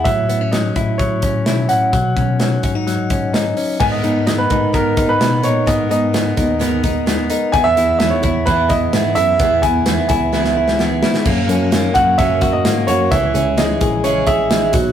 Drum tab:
CC |----------------|----------------|x---------------|----------------|
HH |x-x-x-x-x-x-x-x-|x-x-x-x-x-x-x-o-|--x-x-x-x-x-x-x-|x-x-x-x-x-x-x-x-|
SD |----o-------o---|----o---o---o---|----o-------o---|----o---o---o---|
BD |o-----o-o-o-----|o-o---o---o-----|o-----o-o-o-----|o-----o---o-----|

CC |----------------|----------------|x---------------|----------------|
HH |x-x-x-x-x-x-x-x-|x-x-x-x---------|--x-x-x-x-x-x-x-|x-x-x-x-x-x-x-x-|
SD |----o---o---o---|----o---oo-oo-oo|----o-------o---|----o-------o---|
BD |o-----o-o-o-----|o-o---o---------|o-----o-o-o-----|o-----o---o---o-|